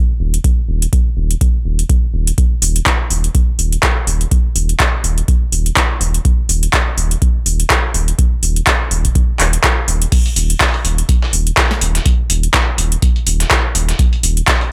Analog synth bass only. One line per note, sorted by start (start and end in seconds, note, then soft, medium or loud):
0.20 0.38 D#1 medium
0.69 0.86 D#1 medium
1.17 1.35 D#1 medium
1.65 1.83 D#1 medium
2.14 2.32 D#1 medium
2.62 2.80 D#1 loud
3.10 3.28 D#1 medium
3.59 3.77 D#1 medium
4.07 4.25 D#1 medium
4.56 4.74 D#1 loud
5.04 5.22 D#1 medium
5.52 5.70 D#1 medium
6.01 6.19 D#1 medium
6.49 6.67 D#1 loud
6.98 7.15 D#1 loud
7.46 7.64 D#1 medium
7.94 8.12 D#1 medium
8.43 8.61 D#1 medium
8.91 9.09 D#1 medium
9.40 9.57 D#1 medium
9.88 10.06 D#1 medium
10.36 10.54 D#1 loud
10.85 11.03 D#1 loud
11.33 11.51 D#1 medium
11.81 11.99 D#1 medium
12.30 12.48 D#1 medium
12.78 12.96 D#1 medium
13.27 13.45 D#1 medium
13.75 13.93 D#1 medium
14.23 14.41 D#1 loud